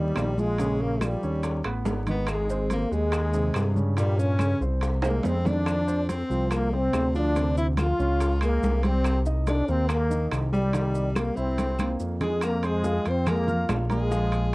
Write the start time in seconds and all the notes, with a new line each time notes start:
Already playing: D#2 D#3 G3 D#4
0.00 G3
0.16 A#1, high bongo, low bongo, high conga, high timbale, low timbale, claves, maracas
0.38 F3 G#3 F4, high bongo, high conga, maracas
0.58 C#3 C#4, high bongo, high conga, high timbale, maracas
0.81 A#3, high bongo, high conga
1.01 F3 G3 F4, high bongo, high conga, high timbale, claves, maracas
1.23 D#2 C#4 C#5, high bongo, high conga, maracas
1.43 high bongo, high conga, high timbale, maracas
1.64 A1 B3 B4, high conga, high timbale, claves
1.85 G#1, high bongo, low bongo, high conga, low timbale, maracas
2.07 D#3 B3 D#4, high bongo, high conga, high timbale, maracas
2.11 B3
2.27 G#3, high bongo, high conga, high timbale, claves, maracas
2.31 G#3
2.50 C4 C5, high bongo, high conga, maracas
2.70 A#3, high bongo, high conga, high timbale, maracas
2.91 D#2 G#3 G4, high conga, maracas
3.12 high bongo, high conga, high timbale, claves, maracas
3.34 C3 C4, high bongo, high conga, maracas
3.54 G2, high bongo, low bongo, high conga, high timbale, claves, maracas
3.75 C#3 C#4, high bongo, high conga, maracas
3.97 A#2 G3 A#3, high bongo, high conga, high timbale, maracas
4.18 C#4, high bongo, high conga, maracas
4.39 C#3 C#4, high bongo, high conga, high timbale, claves, maracas
4.60 C2 C4 C5, high bongo, high conga, maracas
4.81 high bongo, high conga, high timbale, maracas
5.02 G#3 A#3 G#4, high bongo, high conga, high timbale, claves, maracas
5.23 F2 C4, high bongo, high conga, low timbale, maracas
5.28 C4
5.45 D#3 C4 D4, low bongo, high conga, low timbale, maracas
5.49 D4
5.66 high bongo, high conga, high timbale, claves, maracas
5.87 C4 C5, high bongo, high conga, maracas
6.09 C4, high bongo, high conga, high timbale, maracas
6.30 C2 F3 F4, high conga, maracas
6.51 A#3, high bongo, high conga, high timbale, claves, maracas
6.72 C3 C4, high bongo, high conga
6.93 D2, high bongo, low bongo, high conga, high timbale, low timbale, claves, maracas
7.15 F3 D4 F4, high bongo, maracas
7.36 C3 C4, high bongo, high conga, high timbale, maracas
7.57 E4, high bongo, high conga, maracas
7.77 F3 F4, high bongo, high conga, high timbale, claves, maracas
7.99 C#2 C#4 C#5, high bongo, high conga, maracas
8.20 high bongo, high conga, high timbale, maracas
8.41 G#3 A#3 G#4, high conga, high timbale, claves, maracas
8.63 C2, high bongo, low bongo, high conga, maracas
8.83 G3 C4 G4, high bongo, high conga, high timbale, maracas
9.04 high bongo, high conga, high timbale, claves, maracas
9.25 D#4 D#5, high bongo, high conga, maracas
9.47 D4, high bongo, high conga, high timbale, maracas
9.68 D#2 A#3 C4 A#4, high conga, maracas
9.89 A#3, high bongo, high conga, high timbale, claves, maracas
10.10 D#3 D#4, high bongo, high conga, maracas
10.31 C2, high bongo, low bongo, high conga, high timbale, claves, maracas
10.53 G3 G4, high bongo, high conga, maracas
10.73 D#3 D#4, high bongo, high conga, high timbale, maracas
10.95 high bongo, high conga, maracas
11.15 G3 A#3 G4, high bongo, high conga, high timbale, claves, maracas
11.36 C2 C4 E4 E5, high bongo, high conga, maracas
11.58 high bongo, high conga, high timbale, maracas
11.79 A#3 A#4, low bongo, high conga, high timbale, claves, maracas
12.00 F2, maracas
12.21 G#3 G#4, low bongo, low conga, high timbale, maracas
12.41 A#3 A#4, high bongo, high conga, high timbale, claves, maracas
12.63 C4 G#4 C5 C6, high conga, high timbale, maracas
12.67 G#3
12.84 F3 F4 F5, high bongo, high conga, low timbale, maracas
13.06 F2 C5, high conga, high timbale, maracas
13.10 C4
13.26 G#3 A#3 G#4 A#4 G#5, high bongo, high conga, low conga, high timbale, claves, maracas
13.47 F4 F5 F6, high conga, low conga, maracas
13.69 A#1, high bongo, low bongo, high conga, high timbale, low timbale, claves, maracas
13.90 G#3 A#3 G#4 A#4 A#5, high conga, high timbale, maracas
14.11 F3 F4 F5, high bongo, high conga, maracas
14.32 high bongo, high conga, high timbale, maracas